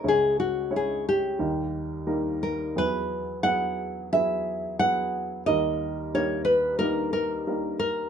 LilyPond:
<<
  \new Staff \with { instrumentName = "Nylon-string guitar" } { \time 4/4 \key e \lydian \tempo 4 = 89 gis'8 fis'8 gis'8 g'4. r8 ais'8 | b'4 fis''4 e''4 fis''4 | dis''4 cis''8 b'8 ais'8 ais'4 ais'8 | }
  \new Staff \with { instrumentName = "Upright piano" } { \time 4/4 \key e \lydian <gis cis' e' cis''>8 r8 <gis cis' e' cis''>8 r8 <g ais dis' ais'>8 r8 <g ais dis' ais'>8 r8 | <fis b e' gis'>8 r8 <fis b e' gis'>8 r8 <fis b e' gis'>8 r8 <fis b e' gis'>8 r8 | <g ais dis' ais'>8 r8 <g ais dis' ais'>8 r8 <g ais dis' ais'>8 r8 <g ais dis' ais'>8 r8 | }
  \new Staff \with { instrumentName = "Upright piano" } { \clef bass \time 4/4 \key e \lydian <cis, cis>2 <dis, dis>2 | e,1 | <dis, dis>1 | }
>>